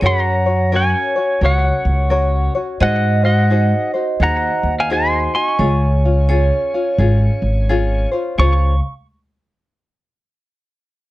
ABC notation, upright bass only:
X:1
M:4/4
L:1/8
Q:"Swing" 1/4=86
K:Db
V:1 name="Upright bass" clef=bass
G,,4 D,, D,,3 | A,,4 E,, E,,3 | D,,4 A,,, A,,,3 | D,, z6 z |]